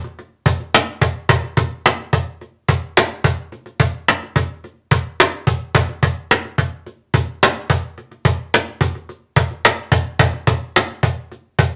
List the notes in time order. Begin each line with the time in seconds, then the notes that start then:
0.04 cajon slap
0.19 cajon slap
0.46 cajon bass
0.60 cajon slap
0.74 cajon slap
1.02 cajon bass
1.29 cajon bass
1.43 cajon slap
1.57 cajon bass
1.86 cajon slap
2.00 cajon slap
2.13 cajon bass
2.41 cajon slap
2.69 cajon bass
2.97 cajon slap
3.24 cajon bass
3.52 cajon slap
3.66 cajon slap
3.80 cajon bass
4.08 cajon slap
4.23 cajon slap
4.36 cajon bass
4.64 cajon slap
4.91 cajon bass
5.20 cajon slap
5.47 cajon bass
5.75 cajon bass
5.89 cajon slap
6.03 cajon bass
6.31 cajon slap
6.45 cajon slap
6.58 cajon bass
6.86 cajon slap
7.14 cajon bass
7.43 cajon slap
7.70 cajon bass
7.98 cajon slap
8.11 cajon slap
8.25 cajon bass
8.54 cajon slap
8.68 cajon slap
8.81 cajon bass
8.95 cajon slap
9.09 cajon slap
9.36 cajon bass
9.51 cajon slap
9.65 cajon slap
9.92 cajon bass
10.19 cajon bass
10.33 cajon slap
10.47 cajon bass
10.76 cajon slap
10.90 cajon slap
11.03 cajon bass
11.32 cajon slap
11.59 cajon bass